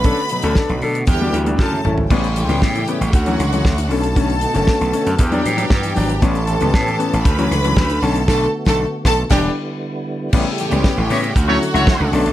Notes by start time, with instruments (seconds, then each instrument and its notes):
Already playing: slap bass B1, tonewheel organ D3 A3 B3 F#4, string section B4 B5
0.04 grand piano C#4 D4 A4, kick, closed hi-hat
0.17 closed hi-hat
0.29 grand piano B2 F#3, closed hi-hat
0.42 slap bass D2, grand piano C#4 D4 A4, closed hi-hat
0.55 grand piano D4 A4, kick, snare
0.69 slap bass B1, grand piano B2 F#3, closed hi-hat
0.82 slap bass B2, grand piano D4 A4, open hi-hat
0.95 closed hi-hat
1.07 slap bass E2, tonewheel organ G3 E4, string section G4 G5, kick, closed hi-hat
1.21 grand piano G3 D4 F#4
1.33 slap bass D2, grand piano E3, closed hi-hat
1.46 grand piano G3 D4 F#4, closed hi-hat
1.59 slap bass F#2, tonewheel organ C#3 F#3 A3, grand piano C#4 E4, string section A4 A5, kick, snare
1.72 grand piano F#3, high tom
1.84 slap bass G#1, grand piano A3 C#4 E4, mid tom
1.98 floor tom
2.10 slap bass A1, tonewheel organ C#3 G3 A3 E4, grand piano G3 B3 C#4, string section G4 G5, kick, crash
2.24 closed hi-hat
2.36 grand piano A2 E3, closed hi-hat
2.48 slap bass C#2, grand piano G3 B3 C#4, closed hi-hat
2.62 slap bass A2, grand piano B3 C#4, kick, snare
2.75 grand piano A2 E3, closed hi-hat
2.87 grand piano B3 C#4, closed hi-hat
3.01 slap bass A1, closed hi-hat
3.12 slap bass D2, tonewheel organ D3 C#4 F#4, string section F#4 F#5, kick, closed hi-hat
3.26 grand piano E3 F#3 C#4, closed hi-hat
3.39 slap bass C#2, grand piano D3, closed hi-hat
3.53 grand piano E3 F#3 C#4, closed hi-hat
3.65 slap bass D2, grand piano F#3 C#4, kick, snare
3.77 grand piano D3, closed hi-hat
3.90 slap bass B1, grand piano D3 A3 C#4, tonewheel organ B3 F#4, string section A4 A5, open hi-hat
4.03 closed hi-hat
4.16 grand piano D3 A3 C#4, kick, closed hi-hat
4.30 closed hi-hat
4.41 grand piano B2, closed hi-hat
4.54 slap bass F#1, grand piano D3 A3 C#4, closed hi-hat
4.67 grand piano A3 C#4, kick, snare
4.80 slap bass B1, grand piano B2, closed hi-hat
4.93 grand piano A3 C#4, closed hi-hat
5.06 slap bass F#2, closed hi-hat
5.19 slap bass E2, tonewheel organ E3 B3 D4 G4, string section G4 G5, kick, closed hi-hat
5.31 grand piano F#3 G3 D4, closed hi-hat
5.44 slap bass A2, grand piano E3, closed hi-hat
5.57 grand piano F#3 G3 D4, closed hi-hat
5.70 slap bass G2, grand piano G3 D4, kick, snare
5.83 grand piano E3, closed hi-hat
5.96 slap bass G#1, grand piano F#3 G3 D4, open hi-hat
6.09 closed hi-hat
6.22 slap bass A1, grand piano G3 B3 C#4, tonewheel organ A3 C#4 G4, string section A4 A5, kick, closed hi-hat
6.35 closed hi-hat
6.47 grand piano A2 E3, closed hi-hat
6.61 slap bass C#2, grand piano G3 B3 C#4, closed hi-hat
6.74 slap bass A2, grand piano B3 C#4, kick, snare
6.86 grand piano A2 E3, closed hi-hat
6.99 grand piano B3 C#4, closed hi-hat
7.13 slap bass A1, closed hi-hat
7.25 slap bass D2, tonewheel organ D3 F#4, string section B4 B5, kick, closed hi-hat
7.38 grand piano E3 F#3 C#4, closed hi-hat
7.51 slap bass C#2, grand piano D3, closed hi-hat
7.64 grand piano E3 F#3 C#4, closed hi-hat
7.76 slap bass D2, grand piano F#3 C#4, kick, snare
7.90 grand piano D3, closed hi-hat
8.02 slap bass B1, grand piano D3 A3 C#4, tonewheel organ B3, string section A4 A5, open hi-hat
8.15 closed hi-hat
8.27 slap bass B1, grand piano D3 A3, string section A4 A5, kick, snare, crash
8.66 slap bass B1, grand piano D3 A3, string section A4 A5, kick, snare
9.05 slap bass B1, string section A4 A5, kick, snare
9.30 slap bass E1, grand piano G3 D4, tonewheel organ G3 E4, string section G4 G5, kick, snare, crash
10.32 slap bass A1, tonewheel organ C#3 G3 A3 E4, grand piano G3 B3 C#4, string section G4 G5, kick, crash
10.58 grand piano A2 E3, closed hi-hat
10.71 slap bass C#2, grand piano G3 B3 C#4, closed hi-hat
10.84 grand piano B3 C#4, kick, snare
10.97 slap bass A1, grand piano A2 E3
11.10 slap bass A2, horn section A3 G4 C#5, grand piano B3 C#4, open hi-hat
11.24 closed hi-hat
11.34 slap bass D2, tonewheel organ D3 C#4 F#4, string section F#4 F#5, kick, closed hi-hat
11.48 grand piano F#3 C#4 E4, horn section A3 F#4 C#5
11.61 grand piano D3, closed hi-hat
11.73 slap bass C#2, grand piano F#3 C#4 E4, horn section A3 F#4 C#5, closed hi-hat
11.87 grand piano C#4 E4, kick, snare
12.00 slap bass C#2, grand piano D3
12.12 slap bass B1, grand piano A3 C#4 D4, tonewheel organ B3 F#4, string section A4 A5, open hi-hat
12.26 slap bass A#1, closed hi-hat